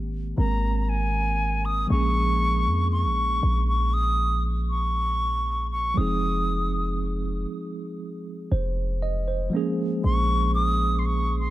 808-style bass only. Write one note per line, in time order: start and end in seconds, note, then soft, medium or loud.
0.00 0.34 G#1 loud
0.38 1.86 G#1 loud
1.90 2.68 A#1 loud
2.66 3.06 F2 loud
3.05 3.41 A#1 medium
3.43 5.93 A#1 loud
5.97 7.46 F1 loud
8.52 9.49 F1 loud
10.04 11.50 A#1 loud